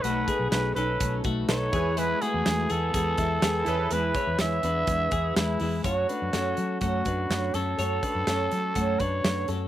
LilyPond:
<<
  \new Staff \with { instrumentName = "Trumpet" } { \time 4/4 \key fis \minor \tempo 4 = 124 b'4 b'8 b'4 r8 cis''4 | b'8 gis'4 a'2~ a'8 | b'4 e''2 e'4 | fis'2 fis'4. a'8~ |
a'2~ a'8 cis''4 r8 | }
  \new Staff \with { instrumentName = "Synth keys" } { \time 4/4 \key fis \minor <dis' a' b'>2. <dis' a' b'>8 <e' b' gis''>8~ | <e' b' gis''>2.~ <e' b' gis''>8 <e' gis' b'>8~ | <e' gis' b'>2.~ <e' gis' b'>8 r8 | r1 |
r1 | }
  \new Staff \with { instrumentName = "Clean electric guitar" } { \time 4/4 \key fis \minor <a fis'>8 <b gis'>4 <cis' a'>4 <a fis'>8 <dis' a'>8 <b gis'>8 | <gis e'>8 <a fis'>4 <b gis'>8 <b gis'>8 <gis e'>8 <b gis'>8 <cis' a'>8 | <e' b'>8 <e' cis''>4 <d' b'>4 <b gis'>8 <gis e'>8 <gis e'>8 | <fis' cis''>8 <d' b'>8 <cis' a'>4 <a fis'>8 <d' b'>4 <cis' a'>8 |
<fis' cis''>8 <d' b'>8 <cis' a'>4 <a fis'>8 <d' b'>4 <cis' a'>8 | }
  \new Staff \with { instrumentName = "Twelve-string acoustic guitar" } { \time 4/4 \key fis \minor <b, fis a dis'>8 <fis a dis'>8 <b, fis a dis'>8 <fis a dis'>8 <b, fis a dis'>8 <fis a dis'>8 <b, fis a dis'>8 <gis b e'>8 | <e gis b e'>8 <gis b e'>8 <e gis b e'>8 <gis b e'>8 <e gis b e'>8 <gis b e'>8 <e gis b e'>8 <gis b e'>8 | <e gis b e'>8 <gis b e'>8 <e gis b e'>8 <gis b e'>8 <e gis b e'>8 <gis b e'>8 <e gis b e'>8 <gis b e'>8 | <fis a cis' fis'>8 <a cis' fis'>8 <fis a cis' fis'>8 <a cis' fis'>8 <fis a cis' fis'>8 <a cis' fis'>8 <fis a cis' fis'>8 <a cis' fis'>8 |
<fis a cis' fis'>8 <a cis' fis'>8 <fis a cis' fis'>8 <a cis' fis'>8 <fis a cis' fis'>8 <a cis' fis'>8 <fis a cis' fis'>8 <a cis' fis'>8 | }
  \new Staff \with { instrumentName = "Fingered electric bass" } { \clef bass \time 4/4 \key fis \minor b,,8 r16 b,,16 b,,8 b,,8 b,,8 b,,8 b,,8 e,8~ | e,8 r16 e,16 e,8 e,8 e,8 e,8 e,8 e,8 | e,8 r16 e,16 e,8 e,8 e,8 e,8 e,8 e,8 | fis,8 r16 fis,16 fis,8 fis8 fis,8 fis,8 fis,8 fis,8 |
fis,8 r16 fis,16 fis,8 fis8 fis,8 fis,8 fis,8 fis,8 | }
  \new DrumStaff \with { instrumentName = "Drums" } \drummode { \time 4/4 hh8 <hh bd>8 <hh sn>8 hh8 <hh bd>8 <hh bd>8 <hh sn>8 <hh bd>8 | hh8 hh8 <hh sn>8 hh8 <hh bd>8 <hh bd>8 <hh sn>8 hh8 | hh8 <hh bd>8 <hh sn>8 hh8 <hh bd>8 <hh bd>8 <hh sn>8 hho8 | <hh bd>8 hh8 <hh sn>8 hh8 <hh bd>8 <hh bd>8 <hh sn>8 hh8 |
hh8 <hh bd>8 <hh sn>8 hh8 <hh bd>8 <hh bd>8 <hh sn>8 hh8 | }
>>